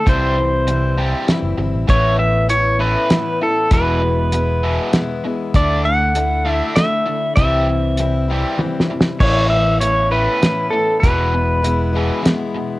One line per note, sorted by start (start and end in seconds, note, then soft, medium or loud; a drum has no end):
0.05 1.13 C2 medium
0.05 0.66 C3 medium
0.05 0.34 C3 medium
0.05 0.67 E3 medium
0.05 0.35 E3 medium
0.05 0.67 G3 medium
0.05 0.35 G3 medium
0.05 0.67 C4 medium
0.05 0.69 E4 medium
0.05 1.25 C5 medium
0.05 kick loud
0.05 closed hi-hat medium
0.38 0.64 C3 medium
0.38 0.65 E3 medium
0.67 0.94 C3 medium
0.67 0.97 E3 medium
0.67 0.95 E3 medium
0.67 0.97 G3 medium
0.67 0.97 C4 medium
0.67 0.95 E4 medium
0.67 closed hi-hat medium
0.96 1.26 C3 medium
0.96 1.26 E3 medium
0.96 1.26 G3 soft
0.96 1.27 G3 medium
0.96 1.26 C4 soft
0.96 1.27 E4 medium
1.27 1.55 C3 medium
1.27 1.57 E3 medium
1.27 1.56 E3 medium
1.27 1.57 G3 medium
1.27 1.56 C4 medium
1.27 1.56 E4 medium
1.27 snare medium
1.27 closed hi-hat medium
1.42 1.56 F#1 medium
1.57 1.71 G1 medium
1.57 1.85 C3 medium
1.57 1.86 E3 medium
1.57 1.87 G3 soft
1.57 1.87 C4 soft
1.57 1.87 E4 soft
1.74 1.87 A1 medium
1.87 2.95 A1 medium
1.87 2.49 A2 medium
1.87 2.17 A2 medium
1.87 2.17 E3 medium
1.87 2.48 E3 medium
1.87 2.17 A3 medium
1.87 2.49 B3 medium
1.87 2.48 C#4 medium
1.87 2.50 E4 medium
1.87 2.17 C#5 loud
1.87 kick loud
1.87 closed hi-hat medium
2.19 2.46 A2 medium
2.19 2.47 E3 medium
2.19 2.49 E5 medium
2.48 2.76 A2 medium
2.48 2.79 E3 medium
2.48 2.77 E3 medium
2.48 2.79 B3 medium
2.48 2.78 C#4 medium
2.48 2.78 E4 medium
2.48 2.81 C#5 medium
2.48 closed hi-hat medium
2.79 3.08 A2 medium
2.79 3.08 E3 medium
2.79 3.09 A3 medium
2.79 3.10 B3 soft
2.79 3.10 C#4 soft
2.79 3.10 E4 soft
2.79 3.43 B4 medium
3.10 3.38 A2 medium
3.10 3.40 E3 medium
3.10 3.38 E3 medium
3.10 3.41 B3 medium
3.10 3.40 C#4 medium
3.10 3.39 E4 medium
3.10 snare medium
3.10 closed hi-hat medium
3.41 3.68 A2 medium
3.41 3.69 E3 medium
3.41 3.70 B3 soft
3.41 3.71 C#4 soft
3.41 3.70 E4 soft
3.41 3.70 A4 medium
3.70 4.78 E1 medium
3.70 4.31 E2 medium
3.70 4.00 E2 medium
3.70 4.32 B2 medium
3.70 4.00 B2 medium
3.70 4.30 E3 medium
3.70 4.01 E3 medium
3.70 4.30 G#3 medium
3.70 4.31 B3 medium
3.70 4.33 E4 medium
3.70 4.90 B4 medium
3.70 kick loud
3.70 closed hi-hat medium
4.02 4.29 E2 medium
4.02 4.29 B2 medium
4.31 4.60 E2 medium
4.31 4.60 B2 medium
4.31 4.92 E3 medium
4.31 4.92 G#3 medium
4.31 4.92 B3 medium
4.31 4.93 E4 medium
4.31 closed hi-hat medium
4.63 4.92 E2 medium
4.63 4.92 B2 medium
4.63 4.92 E3 medium
4.92 5.21 E2 medium
4.92 5.21 B2 medium
4.92 5.23 E3 medium
4.92 5.23 G#3 medium
4.92 5.24 B3 medium
4.92 5.24 E4 medium
4.92 snare medium
4.92 closed hi-hat medium
5.24 5.51 E2 medium
5.24 5.51 B2 medium
5.24 5.54 E3 soft
5.24 5.54 G#3 soft
5.24 5.55 B3 soft
5.24 5.55 E4 medium
5.54 6.61 D2 medium
5.54 6.13 D3 medium
5.54 5.83 D3 medium
5.54 6.14 A3 medium
5.54 5.83 A3 loud
5.54 6.14 D4 medium
5.54 5.83 D4 medium
5.54 6.16 E4 medium
5.54 5.85 D5 medium
5.54 kick loud
5.54 closed hi-hat medium
5.85 6.12 D3 medium
5.85 6.12 A3 medium
5.85 6.52 F#5 loud
6.14 6.45 D3 medium
6.14 6.43 D3 medium
6.14 6.46 A3 medium
6.14 6.43 A3 medium
6.14 6.46 D4 medium
6.14 6.44 E4 medium
6.14 closed hi-hat medium
6.45 6.74 D3 medium
6.45 6.74 A3 medium
6.45 6.75 A3 soft
6.45 6.75 D4 soft
6.45 6.75 D4 medium
6.45 6.76 E4 soft
6.52 6.75 E5 loud
6.75 7.06 D3 medium
6.75 7.03 D3 medium
6.75 7.06 A3 medium
6.75 7.04 A3 medium
6.75 7.06 D4 medium
6.75 7.05 E4 medium
6.75 7.34 E5 medium
6.75 snare medium
6.75 closed hi-hat medium
7.06 7.34 D3 medium
7.06 7.34 A3 medium
7.06 7.37 A3 soft
7.06 7.37 D4 soft
7.06 7.36 E4 soft
7.36 8.43 C2 medium
7.36 7.98 C3 medium
7.36 7.66 C3 medium
7.36 7.97 E3 medium
7.36 7.66 E3 medium
7.36 7.97 G3 medium
7.36 7.66 G3 medium
7.36 7.98 C4 medium
7.36 7.98 E4 medium
7.36 8.54 E5 medium
7.36 kick loud
7.36 closed hi-hat medium
7.69 7.96 C3 medium
7.69 7.96 E3 medium
7.97 8.26 C3 medium
7.97 8.29 E3 medium
7.97 8.26 E3 medium
7.97 8.29 G3 medium
7.97 8.28 C4 medium
7.97 8.27 E4 medium
7.97 closed hi-hat medium
8.28 8.58 C3 medium
8.28 8.58 E3 medium
8.28 8.58 G3 soft
8.28 8.58 G3 loud
8.28 8.58 C4 medium
8.28 8.59 E4 medium
8.58 8.87 C3 medium
8.58 8.89 E3 medium
8.58 8.87 E3 medium
8.58 8.89 G3 medium
8.58 8.88 C4 medium
8.58 8.87 E4 medium
8.58 high tom medium
8.80 snare medium
8.88 9.18 C3 medium
8.88 9.18 E3 medium
8.88 9.19 G3 soft
8.88 9.19 C4 soft
8.88 9.19 E4 soft
9.01 snare medium
9.19 10.26 A1 medium
9.19 9.80 A2 medium
9.19 9.50 A2 medium
9.19 9.80 E3 medium
9.19 9.50 E3 medium
9.19 9.80 B3 medium
9.19 9.80 C#4 medium
9.19 9.81 E4 medium
9.19 9.49 C#5 medium
9.19 kick loud
9.19 crash loud
9.23 9.50 A3 medium
9.50 9.79 A2 medium
9.50 9.79 E3 medium
9.50 9.80 E5 loud
9.80 10.09 A2 medium
9.80 10.11 E3 medium
9.80 10.09 E3 medium
9.80 10.11 B3 medium
9.80 10.11 C#4 medium
9.80 10.09 E4 medium
9.80 10.12 C#5 medium
9.80 closed hi-hat medium
10.10 10.40 A2 medium
10.10 10.40 E3 medium
10.10 10.40 A3 medium
10.10 10.40 B3 soft
10.10 10.41 C#4 soft
10.10 10.41 E4 soft
10.10 10.74 B4 medium
10.41 10.69 A2 medium
10.41 11.02 E3 medium
10.41 10.70 E3 medium
10.41 11.02 B3 medium
10.41 11.02 C#4 medium
10.41 11.03 E4 medium
10.41 snare medium
10.41 closed hi-hat medium
10.70 11.00 A2 medium
10.70 11.00 E3 medium
10.70 11.03 A4 medium
11.00 12.10 E1 loud
11.00 11.63 E2 medium
11.00 11.32 E2 medium
11.00 11.63 B2 medium
11.00 11.62 E3 medium
11.00 11.62 G#3 medium
11.00 11.63 B3 medium
11.00 11.64 E4 medium
11.00 12.19 B4 medium
11.00 kick loud
11.00 closed hi-hat medium
11.04 11.32 B2 medium
11.04 11.32 E3 medium
11.34 11.61 E2 medium
11.34 11.61 B2 medium
11.62 11.91 E2 medium
11.62 11.92 B2 medium
11.62 11.93 E3 medium
11.62 11.93 G#3 medium
11.62 11.92 B3 medium
11.62 11.91 E4 medium
11.62 closed hi-hat medium
11.93 12.23 E2 medium
11.93 12.23 B2 medium
11.93 12.21 E3 soft
11.93 12.24 E3 medium
11.93 12.22 G#3 soft
11.93 12.22 B3 soft
11.93 12.23 E4 medium
12.22 12.53 E2 medium
12.22 12.79 E3 medium
12.22 12.79 G#3 medium
12.22 12.79 B3 medium
12.22 12.79 E4 medium
12.22 snare medium
12.22 closed hi-hat medium
12.26 12.53 B2 medium
12.54 12.79 E2 medium
12.54 12.79 B2 medium